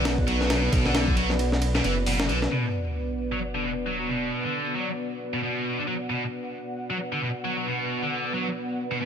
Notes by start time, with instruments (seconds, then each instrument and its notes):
Already playing: detuned saw bass B1, analog synth pad B3 B4 D5 F#5
0.05 distorted electric guitar B2, snare, ride
0.18 kick
0.28 distorted electric guitar F#3, ride
0.41 distorted electric guitar F#3, snare
0.50 distorted electric guitar B2, snare, ride
0.72 detuned saw bass B1, kick, ride
0.85 distorted electric guitar D3, snare
0.95 snare, ride
1.08 kick
1.17 distorted electric guitar F#3, ride
1.30 snare
1.39 ride
1.52 snare
1.62 ride
1.75 distorted electric guitar B2, snare
1.84 detuned saw bass F#1, distorted electric guitar E3, ride
2.06 distorted electric guitar B2, open hi-hat
2.20 distorted electric guitar B2, snare
2.29 detuned saw bass B1, distorted electric guitar D3, ride
2.42 snare
2.51 distorted electric guitar B2, analog synth pad B3 B4 D5 F#5, sub drop
3.32 distorted electric guitar F#3
3.55 distorted electric guitar D3
3.64 distorted electric guitar B2
3.86 distorted electric guitar F#3
3.99 distorted electric guitar F#3
4.09 distorted electric guitar B2
4.44 distorted electric guitar D3
4.76 distorted electric guitar F#3
5.33 distorted electric guitar B2
5.43 distorted electric guitar B2
5.78 distorted electric guitar D3
5.87 distorted electric guitar F#3
6.10 distorted electric guitar B2
6.90 distorted electric guitar F#3
7.12 distorted electric guitar D3
7.22 distorted electric guitar B2
7.45 distorted electric guitar F#3
7.58 distorted electric guitar F#3
7.67 distorted electric guitar B2
8.02 distorted electric guitar D3
8.34 distorted electric guitar F#3
8.92 distorted electric guitar B2
9.02 distorted electric guitar B2